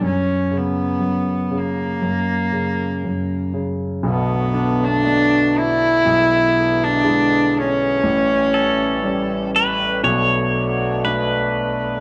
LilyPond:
<<
  \new Staff \with { instrumentName = "Pedal steel guitar" } { \time 4/4 \key b \minor \tempo 4 = 60 r1 | r1 | r8 a'4 b'8 cis''4 b'4 | }
  \new Staff \with { instrumentName = "Harp" } { \time 4/4 \key b \minor r1 | r8 d'2 r4. | r1 | }
  \new Staff \with { instrumentName = "Cello" } { \time 4/4 \key b \minor cis'8 b4 ais2 r8 | b8. d'8. e'4~ e'16 d'8. cis'8~ | cis'4. r2 r8 | }
  \new Staff \with { instrumentName = "Harmonium" } { \clef bass \time 4/4 \key b \minor << { r1 | <b, d>1 | <a, cis'>2 <b, d'>2 | } \\ { r1 | <fis a>2 <e gis>2 | <e g>2 <fis a>2 | } >> }
  \new Staff \with { instrumentName = "Grand piano" } { \clef bass \time 4/4 \key b \minor fis,8 cis8 fis,8 cis8 fis,8 cis8 fis,8 cis8 | <b,, b,>4 <a b d'>4 <b,, b,>4 <d gis e'>4 | <a,, a,>4 <g a cis'>4 <b,, b,>4 <a b d'>4 | }
>>